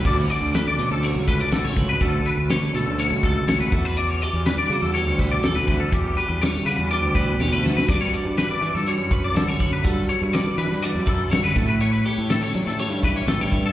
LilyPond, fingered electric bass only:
\new Staff \with { instrumentName = "Fingered electric bass" } { \clef bass \time 4/4 \key d \major \tempo 4 = 122 d,8 r16 d,8 r16 b,16 d,8 cis,8. d,16 cis,8. | d,8 r16 d,8 r16 b,16 d,8 cis,8. d,16 cis,16 e,8~ | e,8. e,8 r16 cis16 e,8 d,8. e,16 d,8. | e,8 r16 e,8 r16 cis16 e,8 d,8. e,16 d,8. |
g,8 r16 g,8 r16 e16 g,8 fis,8. g,16 fis,8. | g,8 r16 g,8 r16 e16 g,8 fis,8. g,16 fis,16 a,8~ | a,8. a,8 r16 fis16 a,8 g,8. a,16 g,8. | }